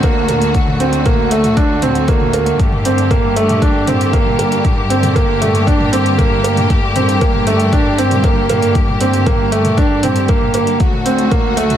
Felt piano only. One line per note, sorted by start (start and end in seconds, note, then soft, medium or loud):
0.04 0.26 A#3 medium
0.29 0.52 A#3 medium
0.80 1.03 C4 medium
1.06 1.29 A#3 medium
1.31 1.54 A3 medium
1.57 1.80 D4 medium
1.83 2.05 C4 medium
2.08 2.31 A#3 medium
2.34 2.56 A#3 medium
2.85 3.08 C4 medium
3.11 3.34 A#3 medium
3.36 3.59 A3 medium
3.62 3.85 D4 medium
3.88 4.10 C4 medium
4.13 4.36 A#3 medium
4.39 4.62 A#3 medium
4.90 5.13 C4 medium
5.16 5.38 A#3 medium
5.41 5.64 A3 medium
5.67 5.90 D4 medium
5.93 6.15 C4 medium
6.18 6.41 A#3 medium
6.44 6.67 A#3 medium
6.96 7.18 C4 medium
7.21 7.44 A#3 medium
7.47 7.70 A3 medium
7.73 7.95 D4 medium
7.98 8.21 C4 medium
8.24 8.47 A#3 medium
8.50 8.72 A#3 medium
9.01 9.23 C4 medium
9.26 9.49 A#3 medium
9.52 9.75 A3 medium
9.77 10.00 D4 loud
10.03 10.26 C4 medium
10.29 10.51 A#3 medium
10.54 10.77 A#3 medium
11.06 11.28 C4 medium
11.31 11.54 A#3 medium
11.57 11.77 A3 medium